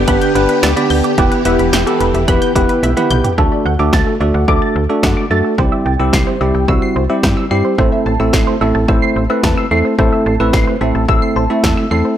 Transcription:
Already playing: D3 B3 G4
0.08 G1 B3 D4 G4 B4 B5, kick, closed hi-hat
0.22 G6, closed hi-hat
0.35 G1 B3 D4 G4 B4, closed hi-hat
0.49 B4, closed hi-hat
0.63 D2 D5, snare, closed hi-hat
0.77 B3 D4 G4 D5 B5, closed hi-hat
0.90 D2 G6, open hi-hat
1.04 G4, closed hi-hat
1.18 E1 E3 B3 E4 G4 B4, kick, closed hi-hat
1.31 B4, closed hi-hat
1.45 E1 B3 E4 G4 B4 E5, closed hi-hat
1.59 E1 B5, closed hi-hat
1.73 E1 G6, snare, closed hi-hat
1.87 B3 E4 G4 A4, closed hi-hat
2.00 E1 B4, closed hi-hat
2.14 E1 E5, closed hi-hat
2.28 E1 B3 E4 G4 B4 B5, kick, closed hi-hat
2.42 G6, closed hi-hat
2.55 E1 B3 E4 G4 B4, kick, closed hi-hat
2.69 B4, closed hi-hat
2.83 B1 E5, closed hi-hat, high tom
2.97 B3 E4 G4 B4 B5, closed hi-hat, mid tom
3.11 B1 G6, closed hi-hat, mid tom
3.24 G4, closed hi-hat, floor tom
3.38 D2 A3 D4 F#4 A4, kick
3.52 D5
3.65 D2 F#5
3.79 D2 A3 D4 F#4 A4 D6
3.93 D2 A6, kick, snare
4.07 A4
4.21 D2 A3 D4 F#4 A4 D5
4.34 D2 F#5
4.48 D2 A3 D4 F#4 A4 D6, kick
4.62 A6
4.76 D2 A4
4.89 A3 D4 F#4 A4 D5
5.03 F#2 F#5, kick, snare
5.17 D6
5.31 F#2 A3 D4 F#4 A4 A6
5.44 A4
5.58 C2 G3 C4 E4 G4 C5, kick
5.72 E5
5.86 C2 G5
5.99 C2 G3 C4 E4 G4 E6
6.13 C2 C7, kick, snare
6.27 C5
6.41 C2 G3 C4 E4 G4 E5
6.54 C2 G5
6.68 C2 G3 C4 E4 F#4 E6, kick
6.82 C7
6.96 C2 C5
7.10 G3 C4 E4 G4 E5
7.23 G2 G5, kick, snare
7.37 E6
7.51 G2 G3 C4 E4 G4 C7
7.65 C5
7.78 A1 A3 C4 E4 A4 C5, kick
7.92 E5
8.06 A1 A5
8.20 A1 A3 C4 E4 A4 E6
8.33 A1 C7, kick, snare
8.47 C5
8.61 A1 A3 C4 E4 A4 E5
8.75 A1 A5
8.88 A1 A3 C4 E4 C5 E6, kick
9.02 C7
9.16 A1 C5
9.30 A3 C4 E4 B4 E5
9.43 E2 A5, kick, snare
9.57 E6
9.71 E2 A3 C4 E4 A4 C7
9.85 C5
9.99 A1 A3 C4 E4 A4 C5, kick
10.12 E5
10.26 A1 A5
10.40 A1 A3 C4 E4 B4 E6
10.53 A1 C7, kick, snare
10.67 C5
10.81 A1 A3 C4 E4 A4 E5
10.95 A1 A5
11.09 A1 A3 C4 E4 A4 E6, kick
11.22 C7
11.36 A1 C5 A5
11.50 A3 C4 E4 A4 E5
11.64 E2 E5 A5, kick, snare
11.77 E6
11.91 E2 A3 C4 E4 A4 C7
12.05 C5

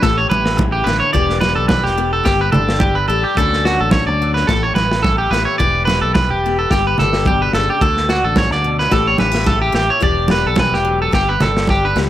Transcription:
0.02 A1 A2 G4 A4, kick, snare, muted conga
0.18 C#5
0.30 A1 E4 B4, muted conga, high conga
0.46 snare
0.57 C#3, muted clean electric guitar stroke, kick, high conga
0.72 G4
0.84 A1 D3 B4, snare, muted conga
1.00 C#5
1.13 E1 E3 B3 D4 G4 D5, kick, muted conga
1.30 snare
1.41 G4 B4, snare, high conga
1.55 B1 A4
1.68 B4, kick, snare, high conga
1.84 E1 G4, snare
1.98 B3 G4
2.13 A4
2.24 G1 G2 G4, kick, snare, muted conga
2.41 B4
2.52 G1 D4 A4, muted conga, low conga
2.69 snare
2.80 G4, kick, high conga
2.95 B4
3.08 A1 G4 A4, muted steel-string acoustic guitar stroke, muted conga
3.24 G4
3.35 D2 D3 F#3 C#4 A4, kick, muted conga
3.40 D4 F#4
3.53 snare
3.65 D4 F#4, snare
3.80 A1 A4
3.91 C#5, kick, snare, high conga
4.07 D2 D5
4.22 F#3 F#4
4.34 B4, snare
4.47 A1 A2 G4 A4, kick, snare, muted conga
4.63 C#5
4.75 A1 E4 B4, snare, muted conga, high conga
4.92 snare
5.03 A4, kick, snare, high conga
5.18 G4
5.31 A1 E3 G4 B4, snare, muted conga
5.45 C#5
5.58 E1 E3 G4 D5, kick, muted conga
5.85 B4, snare, high conga
5.90 G4
6.01 B1 A4
6.14 B4, kick, snare, high conga
6.29 E1 G4
6.46 B3 G4
6.59 A4
6.71 G1 G2 G4, kick, snare, muted conga
6.87 B4
6.98 G1 D4 A4, snare, muted conga, low conga
7.13 snare
7.25 B2 G4, kick, high conga
7.42 B4
7.53 G1 C#3 A4, snare, muted conga
7.70 G4
7.81 D2 D3 F#4 A4, kick, muted conga
7.97 snare
8.09 D4 F#4, snare
8.24 A1 A4
8.36 C#3 C#5, kick, snare, high conga
8.50 D2 D5, snare
8.64 B2
8.79 B4, snare
8.91 A1 A2 G4 A4, kick, snare, muted conga
9.07 C#5
9.18 A1 C#4 B4, snare, muted conga, high conga
9.31 E4, snare
9.44 C#3 A4, kick, snare, high conga
9.61 G4
9.72 A1 G4, muted steel-string acoustic guitar stroke, snare, muted conga
9.90 C#5
10.00 E1 E3 B3 D4 G4 D5, kick, muted conga
10.28 G4 B4, snare, high conga
10.45 B1 A4
10.56 E3 B4, kick, snare, high conga
10.72 E1 G4, snare
10.85 F#3
11.02 A4
11.11 G1 G2 G4, kick, snare, muted conga
11.29 B4
11.40 G1 D4 A4, snare, muted conga, low conga
11.57 snare
11.67 G4, kick, snare, high conga
11.85 B4
11.95 C#2 G3 G4, snare, muted conga

